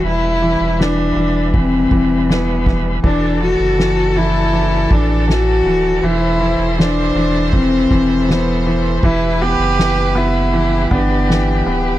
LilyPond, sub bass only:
\new Staff \with { instrumentName = "Sub bass" } { \clef bass \time 4/4 \key e \minor \tempo 4 = 80 e,,8. e,,8. e,,4 e,,4. | e,,8. fis,,4.~ fis,,16 a,,4 d,,8 | e,,8. e,,8. e,,4 e,,4. | e,,8. fis,,4.~ fis,,16 g,,4 d,,8 | }